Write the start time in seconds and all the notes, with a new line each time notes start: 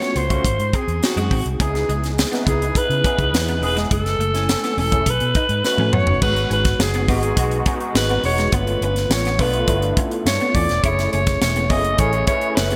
Already playing: A3 C#4 F4 F#4 C#5
0.02 B3, snare, closed hi-hat
0.16 C#2 B3 C5, closed hi-hat
0.29 A3 C#4 F4 F#4, kick, closed hi-hat
0.44 G#1, kick, closed hi-hat
0.59 G#2, closed hi-hat
0.73 C4 G#4, kick, closed hi-hat
0.88 E2, closed hi-hat
1.02 C4 D#4 F#4 G#4, muted clean electric guitar stroke, snare, tambourine
1.16 F#2 G#3, closed hi-hat
1.31 A1 C4, kick, open hi-hat
1.46 C2, closed hi-hat
1.59 C#2 B3 C#4 D#4 E4 G#4, kick, closed hi-hat
1.75 muted clean electric guitar stroke, snare, closed hi-hat
1.89 C#2 G#3, closed hi-hat
2.04 snare, closed hi-hat
2.18 muted clean electric guitar stroke, snare, tambourine
2.32 B3 D#4 E4 B4, snare, closed hi-hat
2.46 C#2 B3 G#4, kick, closed hi-hat
2.62 closed hi-hat
2.75 B4, muted fingered electric bass stroke, kick, closed hi-hat
2.89 C#3, closed hi-hat
3.04 B3 C#4 D#4 E4 G#4, kick, closed hi-hat
3.18 C#2, kick, closed hi-hat
3.33 E2, snare, tambourine
3.48 B3, closed hi-hat
3.61 E1 B3 D#4 E4 G#4, muted clean electric guitar stroke, open hi-hat
3.65 B4
3.76 G#3, snare, closed hi-hat
3.91 F#1 G#3 A4, kick, closed hi-hat
4.06 muted clean electric guitar stroke, snare, closed hi-hat
4.19 F#1 A3, closed hi-hat
4.33 A3 C#4 E4 G#5, snare, closed hi-hat
4.49 muted clean electric guitar stroke, snare, tambourine
4.64 B3, snare, closed hi-hat
4.77 E1 C#4 A4, open hi-hat
4.92 A3 C#4 E4 G#4, kick, closed hi-hat
5.06 B1 B4, kick, closed hi-hat
5.20 B2, closed hi-hat
5.35 D#4, kick, closed hi-hat
5.49 G#2, closed hi-hat
5.64 A3 C#4 D#4 F#4 B4, muted clean electric guitar stroke, snare, tambourine
5.78 A2 C#4, high tom
5.93 F#2 B3 C#5, mid tom
6.07 F#1, floor tom
6.21 G#1 G#3 B3 D#4 F#4 B4, kick, crash
6.36 muted clean electric guitar stroke, closed hi-hat
6.50 G#1 C#4 B4, closed hi-hat
6.65 kick, snare, closed hi-hat
6.79 F#1 G#4, muted clean electric guitar stroke, snare, tambourine
6.94 B3, closed hi-hat
7.08 G#1 G#3 B3 D#4 F#4 G#4, kick, open hi-hat
7.23 closed hi-hat
7.37 B1 G#3 B3 D#4 F#4, kick, closed hi-hat
7.51 closed hi-hat
7.65 G#3 B3 C#4 D#4 F#4, kick, closed hi-hat
7.80 closed hi-hat
7.95 G#1 B4, snare, tambourine
8.09 B3, closed hi-hat
8.24 E1 C#5, muted clean electric guitar stroke, open hi-hat
8.38 G#3, snare, closed hi-hat
8.51 G1 A3 B3 D4 F4 B4, kick, closed hi-hat
8.67 muted clean electric guitar stroke, closed hi-hat
8.81 G1 C#4 B4, closed hi-hat
8.96 snare, closed hi-hat
9.10 A1 C#5, muted clean electric guitar stroke, snare, tambourine
9.25 B3, snare, closed hi-hat
9.38 B1 A3 B3 D4 F4 B4, kick, open hi-hat
9.53 closed hi-hat
9.67 G1 A3 B3 D4 E4, kick, closed hi-hat
9.82 closed hi-hat
9.97 C#4, kick, closed hi-hat
10.11 closed hi-hat
10.26 G2 C#5, muted clean electric guitar stroke, snare, tambourine
10.40 B3, closed hi-hat
10.54 E2 C#4 D5, kick, open hi-hat
10.69 E1, snare, closed hi-hat
10.82 F#1 A3 C#4 E4 G#4 C#5, kick, closed hi-hat
10.99 muted clean electric guitar stroke, snare, closed hi-hat
11.12 F#1 C#4 C#5, closed hi-hat
11.27 kick, snare, closed hi-hat
11.42 E1 C#5, muted clean electric guitar stroke, snare, tambourine
11.56 B3, closed hi-hat
11.69 F#1 A3 B3 C#4 E4 G#4 D#5, kick, open hi-hat
11.84 closed hi-hat
11.98 A1 A3 C#4 E4 G#4 C#5, kick, closed hi-hat
12.13 closed hi-hat
12.27 A3 C#4 E4 B4 C#5, kick, closed hi-hat
12.41 closed hi-hat
12.55 F#1 B4, snare, tambourine
12.70 B3, closed hi-hat